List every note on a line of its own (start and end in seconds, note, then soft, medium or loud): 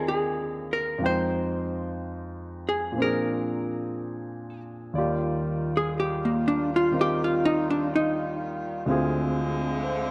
0.00 1.01 D#2 soft
0.00 1.02 D3 soft
0.00 1.01 D#3 soft
0.00 0.99 F3 soft
0.00 1.02 C4 soft
0.00 1.02 F4 soft
0.00 1.02 G5 soft
0.08 0.73 G#4 medium
0.73 1.04 A#4 medium
0.98 2.96 F2 soft
0.98 2.93 F3 soft
0.98 2.98 G#3 soft
1.03 2.98 D#4 soft
1.03 2.73 C5 medium
1.03 2.99 G5 soft
2.69 3.00 G#4 medium
2.92 4.93 A#2 soft
2.92 4.95 F3 soft
2.98 4.96 C4 soft
2.98 4.98 D4 soft
3.02 4.99 G#4 soft
3.02 4.63 A#4 medium
4.93 8.86 D#2 soft
4.93 6.90 D#3 soft
4.93 8.87 D5 soft
4.97 8.84 D#3 medium
4.97 8.84 G3 medium
4.97 8.84 F4 medium
4.97 6.93 F4 soft
4.97 8.88 G4 medium
5.77 5.93 G#4 medium
6.00 6.29 G4 medium
6.25 6.58 A#3 soft
6.48 6.69 D4 medium
6.76 6.92 F4 medium
6.92 8.87 D#3 soft
6.92 8.87 C4 soft
6.92 8.88 D#4 soft
6.92 8.88 F4 soft
7.01 7.24 G4 medium
7.24 7.57 F4 medium
7.45 7.67 D#4 medium
7.70 7.88 D4 medium
7.96 8.33 D#4 medium
8.85 10.11 D2 soft
8.85 10.11 D3 medium
8.85 10.11 D3 soft
8.85 10.11 G#3 medium
8.85 10.11 C4 medium
8.85 10.11 C4 soft
8.85 10.11 F4 medium
8.90 10.11 F4 soft
8.90 10.11 G#4 medium
9.84 10.11 C5 soft